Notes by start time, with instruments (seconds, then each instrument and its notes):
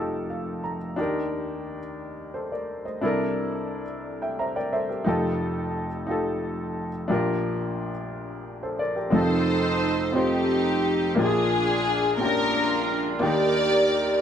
Already playing: upright piano F1 F2 D#4 F4 G4 A#4
0.00 upright piano A4
0.30 upright piano F5
0.64 upright piano A#5
0.96 upright piano D#2 D#3 D4 D#4 G4 A#4
2.34 upright piano A4 C5
2.52 upright piano A#4 D5
2.85 upright piano C5 D#5
3.01 upright piano C2 C3 D4 E4 A4 A#4
4.22 upright piano E5 G5
4.39 upright piano C5 E5 A#5
4.56 upright piano A#4 D5 G5
4.73 upright piano A4 C5 E5
4.89 upright piano G4 A#4
5.04 upright piano F1 F2 D#4 F4 G4 A4
6.07 upright piano D#4 F4 G4
6.11 upright piano A4
7.08 upright piano A#1 A#2 D4 F4 G4
7.12 upright piano A#4
8.63 upright piano A4 C5
8.79 upright piano A#4 D5
8.96 upright piano G4 A#4
9.10 upright piano F1 F2 C4 D#4 F4 A4
9.15 string section D#4 A4 C5
10.12 upright piano C4 D#4 F4 C5
10.17 string section C4 D#4 G4
11.15 upright piano A#1 A#2 A#3 D4 F4
11.19 string section D4 F4 G#4, upright piano G4
11.25 upright piano G#4
12.17 upright piano A#3 C#4 F4 G4, string section F4 A#4
12.21 string section D4
12.26 upright piano D4
13.19 upright piano D#2 D#3 A#3 D4 D#4 G4, string section G4 A#4 D5